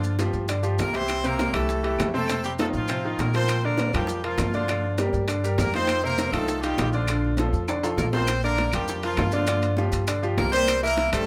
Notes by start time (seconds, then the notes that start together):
Already playing: G2 D3 F3 D4 F4 D5
0.04 high bongo, high conga, maracas
0.19 F3 F4 G4, high bongo, high conga, high timbale, low timbale, maracas
0.33 G2, high bongo, high conga, maracas
0.48 D3 D4 D5, high bongo, high conga, high timbale, claves, maracas
0.63 F3 F4 G4, high conga, maracas
0.79 C2 A#3 A#4, high bongo, low bongo, high conga, high timbale, low timbale, maracas
0.93 E3 C4 E4 G4 C5, high bongo, high conga, high timbale, maracas
1.08 high bongo, high conga, high timbale, claves, maracas
1.24 C3 A#3 C4 A#4 C5, high bongo, high conga, maracas
1.39 high bongo, high conga, high timbale, low timbale, maracas
1.53 C2 E3 A3 E4 G4 A4, high conga, low conga, high timbale, claves, maracas
1.69 high bongo, high conga, maracas
1.83 E3 E4 G4, high conga, high timbale
1.99 F2, high bongo, low bongo, high conga, high timbale, low timbale, claves, maracas
2.14 C3 A3 C4 A4 C5, high bongo, high conga, maracas
2.28 C3 C4 C5, high bongo, high conga, high timbale, claves, maracas
2.44 G3 G4, high bongo, high conga, maracas
2.59 D#3 A3 D#4 F4 A4, high bongo, high conga, high timbale, low timbale, maracas
2.73 A2 F3 F4, high bongo, high conga, maracas
2.88 C3 C4 C5, high bongo, high conga, high timbale, claves, maracas
3.04 D#3 D#4 F4, high conga
3.19 A#2 A#3 A#4, high bongo, low bongo, high conga, high timbale, low timbale, maracas
3.33 F3 C4 F4 A#4 C5, high bongo, high conga, high timbale, maracas
3.48 high bongo, high conga, high timbale, claves, maracas
3.63 D3 A#3 D4 A#4 D5, high bongo, high conga
3.77 high bongo, high conga, high timbale, low timbale, maracas
3.93 F2 F3 G3 F4 G4 A#4, high bongo, high conga, low conga, high timbale, claves, maracas
4.07 high bongo, high conga, maracas
4.24 F3 F4 A#4, high conga, high timbale
4.38 G2, high bongo, low bongo, high conga, high timbale, low timbale, claves, maracas
4.53 D3 F3 D4 F4 D5, high bongo, high conga, maracas
4.68 D3 D4 D5, high bongo, high conga, high timbale, claves, maracas
4.84 high bongo, high conga
4.98 G3 G4 A#4, high bongo, high conga, high timbale, low timbale, maracas
5.13 G2, high bongo, high conga, maracas
5.28 D3 D4 D5, high bongo, high conga, high timbale, claves, maracas
5.44 G3 G4 A#4, high conga, maracas
5.58 F2 A#3 A#4, high bongo, low bongo, high conga, high timbale, low timbale, maracas
5.72 D#3 C4 D#4 F4 C5, high bongo, high conga, high timbale, maracas
5.87 high bongo, high conga, high timbale, claves, maracas
6.02 C3 A#3 C4 A#4 C5, high bongo, high conga
6.18 high bongo, high conga, high timbale, low timbale, maracas
6.32 C2 D#3 A3 D#4 F4 A4, high bongo, high conga, low conga, high timbale, claves, maracas
6.48 high bongo, high conga, maracas
6.62 D#3 G3 D#4 F4 G4, high conga, high timbale, maracas
6.77 A#1, high bongo, low bongo, high conga, high timbale, low timbale, claves, maracas
6.92 D3 F3 D4 F4 D5, high bongo, maracas
7.07 D3 D4 D5, high bongo, high conga, high timbale, claves, maracas
7.23 high bongo, high conga
7.37 F3 F4 A4, high bongo, high conga, high timbale, low timbale, maracas
7.52 F2, high bongo, high conga, maracas
7.68 D3 D4 D5, high bongo, high conga, high timbale, claves, maracas
7.83 F3 F4 A4, high conga, high timbale, maracas
7.97 A#1 A#3 A#4, high bongo, low bongo, high conga, low timbale, maracas
8.12 F3 C4 F4 A#4 C5, high bongo, high conga, low timbale, maracas
8.27 high bongo, high conga, high timbale, claves, maracas
8.42 D3 A#3 D4 A#4 D5, high conga, maracas
8.57 high bongo, high conga, high timbale, maracas
8.72 F2 F3 G3 F4 G4 A#4, high conga, low conga, high timbale, claves, maracas
8.88 high bongo, high conga, low conga, maracas
9.03 F3 F4 A#4, high conga, high timbale, maracas
9.17 G2, high bongo, low bongo, high conga, high timbale, low timbale, claves, maracas
9.32 D3 F3 D4 F4 D5, high conga, maracas
9.47 D3 D4 D5, high bongo, high conga, high timbale, claves, maracas
9.62 high bongo, high conga, high timbale, maracas
9.77 F3 F4 G4, high bongo, high conga, maracas
9.92 G2, high conga, high timbale, maracas
10.07 D3 D4 D5, high bongo, high conga, high timbale, claves, maracas
10.22 F3 F4 G4, high bongo, high conga, maracas
10.37 C2 A#3 A#4, high bongo, low bongo, high conga, high timbale, low timbale, maracas
10.52 G3 C4 G4 A#4 C5, high bongo, high conga, high timbale, maracas
10.67 high bongo, high conga, high timbale, claves, maracas
10.81 E3 A#3 E4 A#4 E5, high conga, maracas
10.97 high bongo, high conga, high timbale, maracas
11.13 G2 G3 A3 G4 A4 C5, high conga, low conga, high timbale, claves, maracas